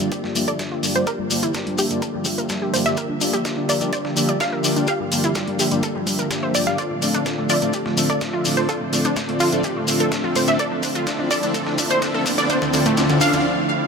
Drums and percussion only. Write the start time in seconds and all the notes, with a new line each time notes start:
0.00 closed hi-hat, shekere
0.12 kick, closed hi-hat, shekere
0.24 snare
0.35 closed hi-hat, open hi-hat, shekere
0.47 closed hi-hat, shekere
0.59 kick, snare, closed hi-hat, shekere
0.83 open hi-hat, shekere
0.95 closed hi-hat, shekere
1.07 kick, closed hi-hat, shekere
1.30 closed hi-hat, open hi-hat, shekere
1.42 closed hi-hat, shekere
1.54 kick, snare, closed hi-hat, shekere
1.67 closed hi-hat
1.78 closed hi-hat, open hi-hat, shekere
1.91 closed hi-hat, shekere
2.02 kick, closed hi-hat, shekere
2.25 kick, closed hi-hat, open hi-hat, shekere
2.38 closed hi-hat, shekere
2.49 kick, snare, closed hi-hat, shekere
2.74 closed hi-hat, open hi-hat, shekere
2.86 snare, closed hi-hat, shekere
2.97 kick, closed hi-hat, shekere
3.21 closed hi-hat, open hi-hat, shekere
3.33 closed hi-hat, shekere
3.45 kick, snare, closed hi-hat, shekere
3.69 closed hi-hat, open hi-hat, shekere
3.81 closed hi-hat, shekere
3.93 kick, closed hi-hat, shekere
4.05 snare
4.17 closed hi-hat, open hi-hat, shekere
4.28 closed hi-hat, shekere
4.40 kick, snare, closed hi-hat, shekere
4.64 open hi-hat, shekere
4.76 closed hi-hat, shekere
4.87 kick, closed hi-hat, shekere
5.12 closed hi-hat, open hi-hat, shekere
5.24 closed hi-hat, shekere
5.35 kick, snare, closed hi-hat, shekere
5.48 closed hi-hat
5.59 closed hi-hat, open hi-hat, shekere
5.71 closed hi-hat, shekere
5.83 kick, closed hi-hat, shekere
6.07 kick, closed hi-hat, open hi-hat, shekere
6.19 closed hi-hat, shekere
6.31 kick, snare, closed hi-hat, shekere
6.55 closed hi-hat, open hi-hat, shekere
6.67 snare, closed hi-hat, shekere
6.78 kick, closed hi-hat, shekere
7.02 closed hi-hat, open hi-hat, shekere
7.14 closed hi-hat, shekere
7.25 kick, snare, closed hi-hat, shekere
7.50 closed hi-hat, open hi-hat, shekere
7.62 closed hi-hat, shekere
7.73 kick, closed hi-hat, shekere
7.86 snare
7.97 closed hi-hat, open hi-hat, shekere
8.10 closed hi-hat, shekere
8.21 kick, snare, closed hi-hat, shekere
8.45 open hi-hat, shekere
8.57 closed hi-hat, shekere
8.69 kick, closed hi-hat, shekere
8.93 closed hi-hat, open hi-hat, shekere
9.04 closed hi-hat, shekere
9.16 kick, snare, closed hi-hat, shekere
9.29 closed hi-hat
9.40 closed hi-hat, open hi-hat, shekere
9.52 closed hi-hat, shekere
9.64 kick, closed hi-hat, shekere
9.87 closed hi-hat, open hi-hat, shekere
10.00 closed hi-hat, shekere
10.12 kick, snare, closed hi-hat, shekere
10.36 closed hi-hat, open hi-hat, shekere
10.47 snare, closed hi-hat, shekere
10.59 kick, closed hi-hat, shekere
10.83 kick, closed hi-hat, open hi-hat, shekere
10.95 closed hi-hat, shekere
11.07 kick, snare, closed hi-hat, shekere
11.31 kick, closed hi-hat, open hi-hat, shekere
11.43 closed hi-hat, shekere
11.54 kick, closed hi-hat, shekere
11.66 snare
11.78 kick, closed hi-hat, open hi-hat, shekere
11.90 closed hi-hat, shekere
12.02 kick, snare, closed hi-hat, shekere
12.26 kick, open hi-hat, shekere
12.38 closed hi-hat, shekere
12.50 kick, closed hi-hat, shekere
12.62 kick, shekere
12.73 kick, closed hi-hat, open hi-hat, shekere
12.86 kick, closed hi-hat, shekere
12.97 kick, snare, closed hi-hat, shekere
13.09 kick, closed hi-hat, shekere
13.21 kick, closed hi-hat, open hi-hat, shekere
13.33 kick, closed hi-hat, shekere